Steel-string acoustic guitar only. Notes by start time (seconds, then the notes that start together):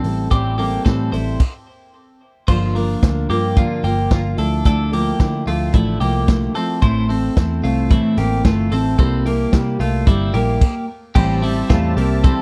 0.04 G3 C4 E4 A4
0.31 A2 E3 G3 C4 E4 A4
0.58 G3 C4 E4 A4
0.86 A2 E3 G3 C4 E4 A4
1.13 G3 C4 E4 A4
2.48 G2 D3 F3 A#3 F4
2.75 F3 A#3 F4
3.03 D3 F3 A#3 F4
3.30 F3 A#3 F4
3.57 G2 D3 F3 A#3 F4
3.84 F3 A#3 F4
4.11 D3 F3 A#3 F4
4.37 F3 A3 E4
4.65 D3 F3 A3 E4
4.91 F3 A3 E4
5.18 D3 F3 A3 E4
5.46 F3 A3 E4
5.73 D3 F3 A3 E4
6.00 F3 A3 E4
6.27 D3 F3 A3 E4
6.54 F3 A3 E4
6.82 A2 E3 A3 C4 E4
7.09 A3 C4 E4
7.36 E3 A3 C4 E4
7.63 A3 C4 E4
7.90 A2 E3 A3 C4 E4
8.17 A3 C4 E4
8.44 E3 A3 C4 E4
8.71 A3 C4 E4
8.98 C3 G3 A#3 E4
9.25 G3 A#3 E4
9.52 C3 G3 A#3 E4
9.79 G3 A#3 E4
10.06 C3 G3 A#3 E4
10.34 G3 A#3 E4
11.15 A2 E3 G3 C4 E4
11.42 G3 C4 E4
11.69 A2 E3 G3 C4 E4
11.97 G3 C4 E4
12.24 E3 G3 C4 E4